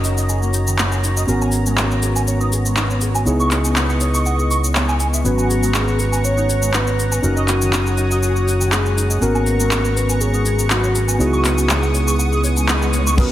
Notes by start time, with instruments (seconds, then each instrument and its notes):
Already playing: fingered electric bass F#1, tine electric piano C#4 D#4 F#4 A#4, analog synth pad F#4 C#5 D#5 A#5
0.04 clean electric guitar D#4, cabasa
0.17 clean electric guitar D#5, cabasa, shaker
0.29 clean electric guitar G#4, cabasa, shaker
0.42 clean electric guitar A#3, shaker
0.53 clean electric guitar D#4, cabasa
0.67 clean electric guitar D#3, cabasa, shaker
0.78 clean electric guitar A#3, clap, cabasa, shaker
0.92 clean electric guitar G#4, shaker
1.04 clean electric guitar D#4, cabasa
1.17 clean electric guitar D#5, cabasa, shaker
1.27 fingered electric bass G#1, tine electric piano B3 C#4 F#4 A#4, analog synth pad B3, clean electric guitar G#4, cabasa, shaker
1.42 clean electric guitar G#5, shaker
1.52 clean electric guitar G#4, cabasa
1.66 clean electric guitar G#3, cabasa, shaker
1.77 clean electric guitar G#4, clap, cabasa, shaker
1.91 clean electric guitar C#5, shaker
2.02 clean electric guitar G#4, cabasa
2.16 clean electric guitar G#5, cabasa, shaker
2.27 clean electric guitar C#5, cabasa, shaker
2.40 clean electric guitar D#4, shaker
2.52 clean electric guitar G#4, cabasa
2.65 clean electric guitar G#3, cabasa, shaker
2.76 clean electric guitar D#4, clap, cabasa, shaker
2.90 clean electric guitar C#5, shaker
3.01 clean electric guitar G#4, cabasa
3.15 clean electric guitar G#5, cabasa, shaker
3.25 fingered electric bass C#2, tine electric piano B3 D#4 E4 G#4, clean electric guitar C#5, analog synth pad D#5 C#6, cabasa, shaker
3.39 clean electric guitar C#6, shaker
3.51 clean electric guitar C#5, clap, cabasa
3.64 clean electric guitar C#4, cabasa, shaker
3.76 clean electric guitar C#5, clap, cabasa, shaker
3.89 clean electric guitar F#5, shaker
4.00 clean electric guitar C#5, cabasa
4.14 clean electric guitar C#6, cabasa, shaker
4.25 clean electric guitar F#5, cabasa, shaker
4.39 clean electric guitar G#4, shaker
4.51 clean electric guitar C#6, cabasa
4.64 clean electric guitar C#5, cabasa, shaker
4.75 clean electric guitar C#5, clap, cabasa, shaker
4.88 clean electric guitar G#5, shaker
5.00 clean electric guitar G#5, cabasa
5.13 clean electric guitar E5, cabasa, shaker
5.24 fingered electric bass G#1, tine electric piano B3 C#4 F#4 B4, soft synth lead F#4, clean electric guitar G#4, analog synth pad F#5 A#5 C#6, cabasa, shaker
5.38 clean electric guitar G#5, shaker
5.49 clean electric guitar G#4, cabasa
5.62 clean electric guitar G#3, cabasa, shaker
5.74 clean electric guitar G#4, soft synth lead G#4, clap, cabasa, shaker
5.87 clean electric guitar C#5, shaker
5.99 clean electric guitar G#4, soft synth lead B4, cabasa
6.12 clean electric guitar G#5, cabasa, shaker
6.24 clean electric guitar C#5, soft synth lead C#5, cabasa, shaker
6.37 clean electric guitar D#4, shaker
6.49 clean electric guitar G#4, cabasa
6.62 clean electric guitar G#3, cabasa, shaker
6.73 clean electric guitar D#4, soft synth lead B4, clap, cabasa, shaker
6.87 clean electric guitar C#5, shaker
6.98 clean electric guitar G#4, cabasa
7.12 clean electric guitar G#5, cabasa, shaker
7.22 fingered electric bass F#1, tine electric piano C#4 D#4 F#4 A#4, clean electric guitar D#4, soft synth lead A#4, analog synth pad C#5 D#6, cabasa, shaker
7.36 clean electric guitar D#5, shaker
7.48 clean electric guitar D#4, soft synth lead F#4, clap, cabasa
7.61 clean electric guitar D#3, cabasa, shaker
7.73 clean electric guitar D#4, clap, cabasa, shaker
7.86 clean electric guitar G#4, shaker
7.97 clean electric guitar D#4, cabasa
8.11 clean electric guitar D#5, cabasa, shaker
8.22 clean electric guitar G#4, cabasa, shaker
8.36 clean electric guitar A#3, shaker
8.47 clean electric guitar D#4, cabasa
8.60 clean electric guitar D#3, cabasa, shaker
8.72 clean electric guitar A#3, soft synth lead G#4, clap, cabasa, shaker
8.85 clean electric guitar G#4, shaker
8.96 clean electric guitar D#4, cabasa
9.10 clean electric guitar D#5, cabasa, shaker
9.21 fingered electric bass G#1, tine electric piano B3 C#4 F#4 A#4, analog synth pad B3 A#5 C#6, clean electric guitar G#4, soft synth lead A#4, cabasa, shaker
9.35 clean electric guitar G#5, shaker
9.46 clean electric guitar G#4, cabasa
9.60 clean electric guitar G#3, cabasa, shaker
9.71 clean electric guitar G#4, clap, cabasa, shaker
9.84 clean electric guitar C#5, shaker
9.96 clean electric guitar G#4, soft synth lead B4, cabasa
10.09 clean electric guitar G#5, cabasa, shaker
10.21 soft synth lead G#4, clean electric guitar C#5, cabasa, shaker
10.34 clean electric guitar D#4, shaker
10.45 clean electric guitar G#4, cabasa
10.58 clean electric guitar G#3, cabasa, shaker
10.70 clean electric guitar D#4, soft synth lead F#4, clap, cabasa, shaker
10.83 clean electric guitar C#5, shaker
10.95 clean electric guitar G#4, cabasa
11.08 clean electric guitar G#5, cabasa, shaker
11.19 fingered electric bass C#2, tine electric piano B3 D#4 E4 G#4, soft synth lead F#4, clean electric guitar C#5, analog synth pad C#6 D#6, cabasa, shaker
11.33 clean electric guitar C#6, shaker
11.44 clean electric guitar C#5, clap, cabasa
11.58 clean electric guitar C#4, cabasa, shaker
11.69 soft synth lead G#4, clean electric guitar C#5, clap, cabasa, shaker
11.83 clean electric guitar F#5, shaker
11.94 clean electric guitar C#5, cabasa
12.07 clean electric guitar C#6, cabasa, shaker
12.19 clean electric guitar F#5, swell, cabasa, shaker
12.32 clean electric guitar G#4, shaker
12.44 clean electric guitar C#5, cabasa
12.56 clean electric guitar C#4, cabasa, shaker
12.68 clean electric guitar G#4, clap, cabasa, shaker
12.82 clean electric guitar F#5, shaker
12.93 clean electric guitar C#5, cabasa
13.06 clean electric guitar C#6, cabasa, shaker
13.17 tine electric piano B3 C#4 F#4 A#4, analog synth pad B3 F#5 A#5 C#6, clean electric guitar G#4, soft synth lead B4, kick, closed hi-hat, crash, impact, shaker